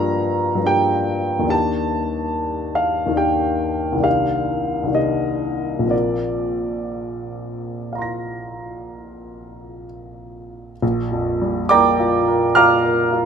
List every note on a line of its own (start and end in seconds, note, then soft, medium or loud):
0.00 0.55 G2 soft
0.00 0.57 F3 soft
0.00 0.60 A#3 soft
0.00 0.63 D4 soft
0.00 0.66 G4 soft
0.00 1.54 F5 medium
0.00 0.67 G5 medium
0.00 0.67 A#5 medium
0.55 1.43 G2 soft
0.55 1.44 F3 soft
0.60 1.43 A#3 soft
0.60 1.45 D4 soft
0.66 1.48 G4 soft
0.66 1.52 G5 medium
1.39 3.05 D#2 soft
1.39 3.07 D#3 soft
1.44 3.10 A#3 soft
1.44 3.13 D4 soft
1.49 3.14 G4 soft
1.49 2.76 A5 medium
2.75 3.19 F5 medium
3.06 3.96 D#2 soft
3.06 3.93 D#3 soft
3.12 3.95 A#3 soft
3.12 3.99 D4 soft
3.17 4.01 G4 soft
3.17 4.04 G5 medium
3.92 4.82 C2 soft
3.92 4.85 D#3 soft
3.97 4.87 A#3 soft
3.97 4.90 D4 soft
4.03 4.92 G4 soft
4.03 4.95 F5 medium
4.83 5.83 C2 soft
4.83 5.84 D#3 soft
4.89 5.84 A#3 soft
4.89 5.87 D4 soft
4.94 5.88 G4 soft
4.94 5.92 D#5 medium
5.79 10.71 A#1 soft
5.79 10.73 F3 soft
5.85 10.74 A#3 soft
5.85 10.75 C4 soft
5.89 10.76 A#4 soft
5.89 9.85 D5 medium
7.93 10.78 F5 soft
7.93 10.80 A#5 soft
7.98 10.81 C6 soft
7.98 10.83 A#6 soft
10.82 13.25 A#1 medium
11.12 11.59 F2 soft
11.42 11.88 G3 soft
11.69 12.17 A#3 medium
11.69 12.52 D5 medium
11.69 12.53 G5 medium
11.69 12.53 A#5 medium
11.69 12.55 D6 loud
12.00 12.45 F4 medium
12.28 12.73 A#4 medium
12.55 13.02 F4 medium
12.55 13.25 F5 medium
12.55 13.25 A#5 medium
12.55 13.25 D6 medium
12.55 13.25 F6 loud
12.85 13.25 A#4 medium
13.12 13.25 F4 medium